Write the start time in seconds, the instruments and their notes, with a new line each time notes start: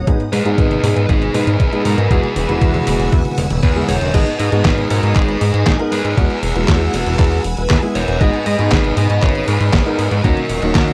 Already playing: string machine D#6
0.07 analog synth bass G#1, grand piano G#2 G#3 B3 D#4 G#4, string machine B4 D#5 G#5, kick, closed hi-hat, mid tom
0.20 closed hi-hat
0.33 analog synth bass G#2, lead electric guitar G#4 B4, open hi-hat, mid tom
0.45 analog synth bass G#2, grand piano G#2 G#3 B3 D#4 G#4, closed hi-hat
0.58 analog synth bass G#1, kick, closed hi-hat, mid tom
0.71 closed hi-hat, high tom
0.83 analog synth bass G#2, grand piano G#2 G#3 B3 D#4 G#4, open hi-hat, mid tom
0.96 analog synth bass G#2, closed hi-hat
1.09 analog synth bass G#1, lead electric guitar D#4 G#4, kick, closed hi-hat, mid tom
1.22 closed hi-hat, high tom
1.34 analog synth bass G#2, grand piano G#2 G#3 B3 D#4 G#4, lead electric guitar G#4 B4, open hi-hat, mid tom
1.47 analog synth bass G#2, closed hi-hat
1.60 analog synth bass G#1, kick, closed hi-hat, mid tom
1.73 grand piano G#2 G#3 B3 D#4 G#4, closed hi-hat
1.85 analog synth bass G#2, lead electric guitar F#4 A#4, open hi-hat, mid tom
1.98 analog synth bass G#2, closed hi-hat
2.11 analog synth bass E2, grand piano G#3 B3 E4 F#4, lead electric guitar E4 G#4, string machine F#5 E6, kick, closed hi-hat, mid tom
2.23 closed hi-hat, mid tom
2.36 analog synth bass E1, open hi-hat, mid tom
2.49 analog synth bass E1, grand piano G#3 B3 E4 F#4, closed hi-hat, mid tom
2.61 analog synth bass E2, kick, closed hi-hat, mid tom
2.74 closed hi-hat, mid tom, high tom
2.87 analog synth bass E1, grand piano G#3 B3 E4 F#4, open hi-hat, mid tom
3.00 analog synth bass E1, closed hi-hat, mid tom
3.12 analog synth bass E2, kick, closed hi-hat, mid tom
3.19 mid tom
3.25 closed hi-hat, mid tom, high tom
3.31 mid tom
3.38 analog synth bass E1, open hi-hat, mid tom, high tom
3.44 mid tom
3.50 analog synth bass E1, closed hi-hat, mid tom, high tom
3.57 mid tom
3.63 analog synth bass E2, lead electric guitar G#4 B4, kick, closed hi-hat, mid tom
3.70 mid tom
3.76 grand piano G#3 B3 E4 G#4, closed hi-hat, mid tom
3.82 mid tom
3.88 analog synth bass E1, lead electric guitar A#4 C#5, open hi-hat, mid tom
3.95 mid tom
4.01 analog synth bass E1, closed hi-hat, mid tom
4.08 mid tom
4.14 analog synth bass G#1, grand piano G#2 G#3 B3 D#4 G#4, string machine B4 D#5 G#5 D#6, lead electric guitar B4 D#5, kick, closed hi-hat, crash
4.27 closed hi-hat
4.39 analog synth bass G#2, lead electric guitar B4 D#5, open hi-hat
4.52 grand piano G#2 G#3 B3 D#4 G#4, analog synth bass G#2, closed hi-hat
4.64 analog synth bass G#1, lead electric guitar G#4 B4, kick, snare, clap, closed hi-hat
4.78 closed hi-hat, high tom
4.90 analog synth bass G#2, grand piano G#2 G#3 B3 D#4 G#4, lead electric guitar F#4 A#4, open hi-hat
5.03 analog synth bass G#2, closed hi-hat
5.16 analog synth bass G#1, lead electric guitar D#4 G#4, kick, clap, closed hi-hat
5.29 closed hi-hat
5.41 analog synth bass G#2, open hi-hat
5.54 analog synth bass G#2, closed hi-hat
5.66 analog synth bass G#1, lead electric guitar D#4 G#4, kick, snare, clap, closed hi-hat
5.79 grand piano G#2 G#3 B3 D#4 A#4, closed hi-hat
5.92 analog synth bass G#2, lead electric guitar G#4 B4, open hi-hat
6.05 analog synth bass G#2, closed hi-hat
6.17 analog synth bass E2, grand piano G#3 B3 E4 F#4, string machine F#5 E6, kick, closed hi-hat
6.30 closed hi-hat
6.43 analog synth bass E1, open hi-hat
6.56 analog synth bass E1, grand piano G#3 B3 E4 F#4, closed hi-hat
6.68 analog synth bass E2, kick, snare, clap, closed hi-hat
6.81 closed hi-hat
6.94 analog synth bass E1, grand piano G#3 B3 E4 F#4, open hi-hat
7.06 analog synth bass E1, closed hi-hat, high tom
7.19 analog synth bass E2, kick, clap, closed hi-hat
7.32 closed hi-hat
7.44 analog synth bass E1, open hi-hat
7.57 analog synth bass E1, closed hi-hat
7.70 analog synth bass E2, lead electric guitar G#4 B4, kick, snare, clap, closed hi-hat
7.82 grand piano G#3 B3 E4 G#4, closed hi-hat
7.95 analog synth bass E1, lead electric guitar A#4 C#5, open hi-hat
8.08 analog synth bass E1, closed hi-hat
8.21 analog synth bass G#1, grand piano G#2 G#3 B3 D#4 G#4, string machine B4 D#5 D#6, lead electric guitar B4 D#5, kick, closed hi-hat
8.33 closed hi-hat
8.46 analog synth bass G#2, lead electric guitar B4 D#5, open hi-hat
8.59 grand piano G#2 G#3 B3 D#4 G#4, analog synth bass G#2, closed hi-hat
8.71 analog synth bass G#1, lead electric guitar G#4 B4, kick, snare, clap, closed hi-hat
8.84 closed hi-hat, high tom
8.97 grand piano G#2 G#3 B3 D#4 G#4, analog synth bass G#2, lead electric guitar B4 D#5, open hi-hat
9.10 analog synth bass G#2, closed hi-hat
9.22 analog synth bass G#1, lead electric guitar G#4 C#5, kick, clap, closed hi-hat
9.35 closed hi-hat
9.48 analog synth bass G#2, lead electric guitar G#4 B4, open hi-hat
9.61 analog synth bass G#2, closed hi-hat
9.73 analog synth bass G#1, kick, snare, clap, closed hi-hat
9.86 grand piano G#2 G#3 B3 D#4 A#4, closed hi-hat
9.99 analog synth bass G#2, open hi-hat
10.11 analog synth bass G#2, closed hi-hat
10.24 analog synth bass D#2, grand piano D#3 A#3 C#4 D#4 F#4, lead electric guitar F#4 A#4, string machine A#4 D#5 F#5 C#6, kick, closed hi-hat
10.37 closed hi-hat, high tom
10.50 analog synth bass D#1, open hi-hat
10.62 analog synth bass D#1, grand piano D#3 A#3 C#4 D#4 F#4, closed hi-hat
10.75 analog synth bass D#2, lead electric guitar F#4 A#4, kick, snare, clap, closed hi-hat
10.88 closed hi-hat, high tom